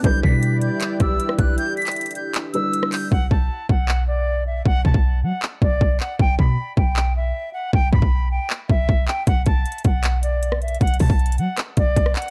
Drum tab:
HH |x-----------------------x-----------x-----------x-----------x-----------x-----------x-----------|x-----------x--x--x--x--x--x--x--x--x-----------x-----------x-----------x-----------o-----------|------------------------------------------------------------------------------------------------|------------------------------------------------------------------------------------------------|
CP |------------------------------------------------x-----------------------------------------------|------------------x-----------------------------x-----------------------------------x-----------|------------------------------------------------x-----------------------------------------------|------------------------------------------------x-----------------------------------x-----------|
SD |------------------------------------------------------------r-----------------r-----------------|------------------------------------------------------------------------------r-----------------|------------------------------------------------------------------------------------------------|------------------------------------------------------------------------------------------------|
BD |o-----------o-----------------------------------------------o-----------------------o-----------|------------------------------------------------------------------------------------------------|o-----------o-----------------------o-----------------------------------------------------------|o-----------o-----o-----------------------------------------o-----------o-----------------------|

HH |------------------------------------------------------------------------------------------------|------------------------------------------------------------------------------------------------|x-----------x-----------x---x---x---x-----------x-----------x-----------x-----------x---x---x---|x---x---x---o-----------x---x---x---x-----------x-----------x-----------x-----------x---x-------|
CP |------------------------------------------------x-----------------------------------------------|------------------------------------------------x-----------------------------------x-----------|------------------------------------------------x-----------------------------------------------|------------------------------------------------x-----------------------------------x-----------|
SD |------------------------------------------------------------------------------------------------|------------------------------------------------------------------------------------------------|------------------------------------------------------------------------------r-----------------|------------------------------------------------r-----------------------------r-----------------|
BD |o-----------o-----------------------o-----------------------------------------------------------|o-----------o-----o-----------------------------------------o-----------o-----------------------|o-----------o-----------------------o-----------------------------------------------------------|o-----------o-----o-----------------------------------------o-----------o-----------------------|